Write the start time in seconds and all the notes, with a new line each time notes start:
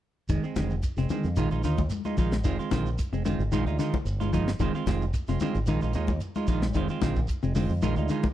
0.29 F1 D#3 G#3, muted clean electric guitar stroke, kick, closed hi-hat, shekere
0.44 G#3 C4, shekere
0.56 F1 D3 D#3 G#3 C4, kick, snare, closed hi-hat, high conga, shekere
0.70 shekere
0.83 kick, closed hi-hat, shekere
0.97 F1 C3 G#3 C4, snare, closed hi-hat, shekere
1.09 D3 D#3 G#3 C4, closed hi-hat, high conga, low conga, shekere
1.24 F2, closed hi-hat, shekere
1.36 A#1 D#3 G#3 D#4 F4, closed hi-hat, low conga, shekere
1.51 A#1 G#3 D#4 F4, closed hi-hat, shekere
1.63 D#2 D3 D#3 D#4 F4, muted clean electric guitar stroke, snare, closed hi-hat, shekere
1.78 kick, closed hi-hat, high conga, shekere
1.90 closed hi-hat, high conga, shekere
2.05 G#3 D#4 F4, high conga, shekere
2.17 A#1 D#3 F3 G#3 D#4 F4, kick, closed hi-hat, low conga, shekere
2.32 snare, high conga, shekere
2.44 F1 D#3 G#3 C4 F4, kick, closed hi-hat, shekere
2.59 G#3 C4 F4, closed hi-hat, shekere
2.71 A#1 D3 D#3 G#3 C4 F4, kick, snare, closed hi-hat, high conga, shekere
2.86 shekere
2.98 kick, closed hi-hat, shekere
3.12 F1 C3 G#3 C4, muted clean electric guitar stroke, closed hi-hat, shekere
3.25 D3 D#3 G#3 C4 F4, closed hi-hat, high conga, low conga, shekere
3.39 G#1, shekere
3.51 A#1 D#3 G#3 D#4 F4, closed hi-hat, high conga, shekere
3.66 D2 G#3 D#4 F4, closed hi-hat, shekere
3.79 D3 D#3 G#3 D#4 F4, snare, closed hi-hat, shekere
3.93 muted fingered electric bass stroke, kick, high conga, shekere
4.05 G1, closed hi-hat, shekere
4.20 G#3 D#4 F4, closed hi-hat, high conga, shekere
4.33 D#3 F3 G#3 D#4 F4, kick, closed hi-hat, low conga, shekere
4.48 snare, shekere
4.59 F1 D#3 G#3 C4 F4, kick, closed hi-hat, shekere
4.75 G#3 C4 F4, shekere
4.86 F1 D#3 G#3 C4 F4, muted clean electric guitar stroke, kick, snare, closed hi-hat, high conga, shekere
5.02 shekere
5.14 kick, closed hi-hat, shekere
5.28 F1 C3 G#3 C4 F4, snare, closed hi-hat, shekere
5.40 D3 D#3 G#3 C4 F4, closed hi-hat, high conga, low conga, shekere
5.55 G#1, closed hi-hat, shekere
5.67 A#1 D#3 G#3 D#4 F4, closed hi-hat, high conga, low conga, shekere
5.81 A#1 G#3 D#4 F4, closed hi-hat, shekere
5.93 D#2 D#3 G#3 D#4 F4, muted clean electric guitar stroke, closed hi-hat, shekere
6.07 kick, closed hi-hat, high conga, shekere
6.20 closed hi-hat, shekere
6.35 G#3 D#4 F4, high conga, shekere
6.47 A#1 D#3 F3 G#3 D#4 F4, kick, closed hi-hat, low conga, shekere
6.62 snare, high conga, shekere
6.74 F1 D#3 G#3 C4 F4, kick, closed hi-hat, shekere
6.89 G#3 C4 F4, closed hi-hat, shekere
7.02 A#1 D3 D#3 G#3 C4 F4, kick, snare, closed hi-hat, high conga, shekere
7.16 kick, shekere
7.28 kick, closed hi-hat, shekere
7.43 F1 C3 G#3 C4, muted clean electric guitar stroke, closed hi-hat, shekere
7.55 D3 D#3 G#3 C4 F4, open hi-hat, high conga, low conga, shekere
7.69 F2, shekere
7.82 A#1 D#3 G#3 D#4 F4, closed hi-hat, high conga, shekere
7.96 D2 G#3 D#4 F4, closed hi-hat, shekere
8.08 D3 D#3 G#3 D#4 F4, closed hi-hat, shekere
8.23 muted fingered electric bass stroke, kick, high conga, shekere